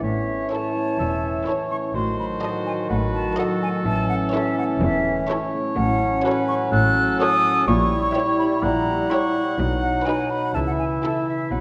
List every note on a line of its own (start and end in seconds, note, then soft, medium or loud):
0.00 0.42 A1 medium
0.00 0.42 A2 medium
0.00 1.93 A2 medium
0.00 1.96 E3 medium
0.00 1.95 C#4 medium
0.00 0.51 E4 soft
0.00 1.92 E4 medium
0.00 1.96 C#5 medium
0.00 0.98 C#5 medium
0.00 0.50 E5 medium
0.28 0.75 A3 soft
0.51 0.88 E4 medium
0.51 1.45 E4 soft
0.51 0.88 A4 medium
0.51 0.88 C#5 medium
0.51 1.69 A5 medium
0.76 1.22 A3 soft
0.99 1.38 E1 medium
0.99 1.38 E2 medium
0.99 1.97 E3 soft
0.99 1.46 E5 medium
1.23 1.69 A3 soft
1.47 1.97 E4 soft
1.47 1.83 E4 medium
1.47 1.83 A4 medium
1.47 1.94 C#5 medium
1.47 1.83 C#5 medium
1.70 2.18 A3 soft
1.70 1.76 C#6 medium
1.94 2.33 A1 medium
1.94 2.89 A2 medium
1.94 2.33 A2 medium
1.94 3.87 D#3 medium
1.94 3.69 F#3 medium
1.94 3.69 D#4 medium
1.94 3.87 F#4 medium
1.94 2.89 C5 medium
1.94 2.18 C6 medium
2.19 2.65 A3 soft
2.19 2.25 B5 medium
2.42 2.78 F#4 medium
2.42 3.37 F#4 soft
2.42 2.78 A4 medium
2.42 2.78 D#5 medium
2.42 2.49 A5 medium
2.66 3.61 A3 soft
2.66 2.72 G#5 medium
2.90 3.28 A1 medium
2.90 3.28 A2 medium
2.90 3.85 A2 medium
2.90 3.37 B4 medium
2.90 2.96 F#5 medium
3.13 3.88 F#3 medium
3.13 3.37 A5 medium
3.38 3.74 F#4 medium
3.38 3.88 F#4 medium
3.38 3.74 A4 medium
3.38 4.98 A4 medium
3.38 3.74 D#5 medium
3.38 3.44 F#5 medium
3.62 4.09 A3 medium
3.62 3.69 G#5 medium
3.85 4.24 A1 medium
3.85 4.24 A2 medium
3.85 5.76 A2 medium
3.85 5.60 E3 medium
3.85 5.73 E3 medium
3.85 5.60 C#4 medium
3.85 7.64 C#4 medium
3.85 4.09 A5 loud
4.09 4.57 A3 medium
4.09 4.15 F#5 medium
4.33 5.28 E4 medium
4.33 4.70 E4 medium
4.33 4.69 A4 medium
4.33 4.69 C#5 medium
4.33 4.57 E5 medium
4.58 5.05 A3 medium
4.58 4.64 F#5 medium
4.81 5.19 E1 medium
4.81 5.19 E2 medium
4.81 5.79 E3 medium
4.81 5.29 E5 medium
5.06 5.53 A3 medium
5.29 5.65 E4 medium
5.29 5.79 E4 medium
5.29 5.65 A4 medium
5.29 6.21 C#5 medium
5.29 5.65 C#5 medium
5.54 6.95 A3 medium
5.77 6.15 A1 medium
5.77 6.15 A2 loud
5.77 6.72 A2 medium
5.77 7.64 F#3 medium
5.77 7.69 C#4 medium
5.77 6.45 F#5 loud
6.01 6.48 C#4 medium
6.24 6.60 F#4 medium
6.24 7.19 F#4 medium
6.24 6.60 A4 medium
6.24 6.71 B4 medium
6.24 6.60 C#5 medium
6.48 7.43 C#4 medium
6.48 6.54 C#6 loud
6.72 7.10 A1 medium
6.72 7.10 A2 medium
6.72 7.70 A2 medium
6.72 7.66 A4 medium
6.72 7.19 F#6 loud
6.97 7.70 A3 medium
7.20 7.55 F#4 medium
7.20 7.70 F#4 medium
7.20 7.56 A4 medium
7.20 7.56 C#5 medium
7.20 7.69 D#6 loud
7.44 9.61 C#4 medium
7.67 8.05 A#1 loud
7.67 8.06 A#2 loud
7.67 9.61 A#2 medium
7.67 9.55 G3 medium
7.67 9.42 G3 medium
7.67 9.61 E4 medium
7.67 9.42 E4 medium
7.67 8.65 C#5 medium
7.67 8.39 C#6 loud
7.92 8.38 E4 medium
8.15 8.51 E4 medium
8.15 8.51 G4 medium
8.15 9.10 G4 medium
8.15 8.52 C#5 medium
8.39 8.86 E4 medium
8.39 8.45 B5 loud
8.56 8.62 B5 medium
8.63 9.01 A#1 medium
8.63 9.01 A#2 medium
8.63 9.61 A#3 medium
8.63 10.56 F#5 loud
8.63 9.12 A#5 loud
8.87 9.34 E4 medium
9.10 9.47 E4 medium
9.10 9.46 G4 medium
9.10 9.61 G4 medium
9.10 9.47 C#5 medium
9.10 9.59 C#6 medium
9.35 9.61 E4 medium
9.59 9.97 B1 medium
9.59 10.57 B2 medium
9.59 9.97 B2 medium
9.59 10.57 F#3 medium
9.59 10.54 F#3 medium
9.59 10.53 D#4 medium
9.59 10.57 D#4 medium
9.82 10.29 D#4 medium
9.82 10.07 F#5 medium
10.05 10.43 D#4 medium
10.05 10.43 F#4 medium
10.05 10.57 F#4 soft
10.05 10.43 B4 medium
10.05 10.31 G#5 medium
10.30 10.57 D#4 soft
10.30 10.53 B5 medium
10.54 10.93 C#2 medium
10.54 11.54 C#3 medium
10.54 10.93 C#3 medium
10.54 11.51 E3 medium
10.54 11.52 E3 medium
10.54 11.61 E4 medium
10.54 11.51 E5 medium
10.54 10.60 A5 medium
10.67 10.73 F#5 medium
10.79 11.27 E4 soft
10.79 10.85 G#5 medium
11.02 11.54 C#4 soft
11.02 11.39 E4 medium
11.02 11.40 E4 medium
11.02 11.40 A4 medium
11.02 11.27 A5 medium
11.28 11.61 E4 soft
11.28 11.53 E5 medium
11.51 11.61 B1 medium
11.51 11.61 B2 medium
11.51 11.61 F#3 medium
11.51 11.61 F#3 soft
11.51 11.61 B4 medium
11.51 11.61 F#5 medium